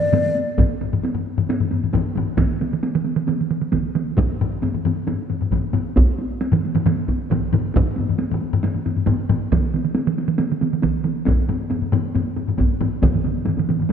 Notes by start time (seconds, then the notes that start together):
Already playing: D5
0.01 taiko high
0.12 taiko low-mid, taiko mid, taiko high
0.25 taiko high
0.35 taiko high
0.47 taiko high
0.58 taiko, taiko low-mid, taiko high
0.69 taiko high
0.81 taiko low-mid, taiko high
0.92 taiko low-mid, taiko high
1.03 taiko high
1.15 taiko low-mid
1.37 taiko low-mid, taiko high
1.49 taiko low-mid, taiko high
1.60 taiko low-mid, taiko high
1.71 taiko low-mid, taiko high
1.82 taiko low-mid, taiko high
1.93 taiko, taiko low-mid, taiko high
2.03 taiko high
2.15 taiko low-mid, taiko high
2.27 taiko high
2.37 taiko, taiko mid, taiko high
2.49 taiko high
2.61 taiko mid, taiko high
2.72 taiko mid, taiko high
2.83 taiko high
2.95 taiko mid
3.04 taiko high
3.16 taiko mid, taiko high
3.27 taiko mid, taiko high
3.39 taiko mid, taiko high
3.51 taiko mid
3.61 taiko mid, taiko high
3.72 taiko, taiko mid, taiko high
3.84 taiko high
3.95 taiko mid, taiko high
4.07 taiko high
4.18 taiko, taiko low-mid, taiko high
4.41 taiko low-mid
4.52 taiko high
4.62 taiko low-mid, taiko high
4.75 taiko low-mid
4.85 taiko low-mid, taiko high
4.96 taiko high
5.07 taiko low-mid, taiko high
5.19 taiko high
5.30 taiko low-mid, taiko high
5.41 taiko low-mid, taiko high
5.51 taiko, taiko low-mid, taiko high
5.63 taiko high
5.73 taiko low-mid, taiko high
5.84 taiko high
5.96 taiko, taiko high
6.07 taiko high
6.19 taiko high
6.31 taiko high
6.42 taiko high
6.52 taiko low-mid, taiko mid, taiko high
6.64 taiko high
6.75 taiko low-mid, taiko mid, taiko high
6.86 taiko low-mid, taiko mid, taiko high
6.98 taiko high
7.08 taiko, taiko high
7.21 taiko high
7.31 taiko, taiko low-mid, taiko mid, taiko high
7.43 taiko high
7.52 taiko low-mid, taiko mid, taiko high
7.63 taiko high
7.74 taiko, taiko low-mid, taiko high
7.87 taiko high
7.96 taiko low-mid, taiko high
8.07 taiko low-mid, taiko high
8.18 taiko high
8.31 taiko low-mid
8.42 taiko high
8.52 taiko low-mid, taiko high
8.63 taiko low-mid, taiko high
8.74 taiko low-mid, taiko high
8.86 taiko low-mid, taiko high
8.96 taiko low-mid, taiko high
9.07 taiko, taiko low-mid, taiko high
9.19 taiko high
9.29 taiko low-mid, taiko high
9.41 taiko high
9.52 taiko, taiko mid, taiko high
9.63 taiko high
9.74 taiko mid, taiko high
9.84 taiko mid, taiko high
9.95 taiko high
10.07 taiko mid
10.18 taiko high
10.28 taiko mid, taiko high
10.39 taiko mid, taiko high
10.51 taiko mid, taiko high
10.61 taiko mid, taiko high
10.72 taiko mid, taiko high
10.82 taiko, taiko mid, taiko high
10.94 taiko high
11.04 taiko mid, taiko high
11.15 taiko high
11.25 taiko, taiko low-mid, taiko high
11.37 taiko high
11.49 taiko low-mid, taiko high
11.59 taiko high
11.70 taiko low-mid, taiko high
11.82 taiko low-mid
11.93 taiko low-mid, taiko high
12.04 taiko high
12.15 taiko low-mid, taiko high
12.27 taiko high
12.37 taiko low-mid, taiko high
12.48 taiko low-mid, taiko high
12.58 taiko, taiko low-mid, taiko high
12.70 taiko high
12.81 taiko low-mid, taiko high
12.92 taiko high
13.02 taiko, taiko low-mid, taiko mid, taiko high
13.13 taiko low-mid, taiko mid, taiko high
13.24 taiko low-mid, taiko mid, taiko high
13.35 taiko high
13.45 taiko low-mid, taiko mid, taiko high
13.57 taiko low-mid, taiko mid, taiko high
13.69 taiko low-mid, taiko mid, taiko high
13.79 taiko low-mid, taiko mid, taiko high
13.89 taiko high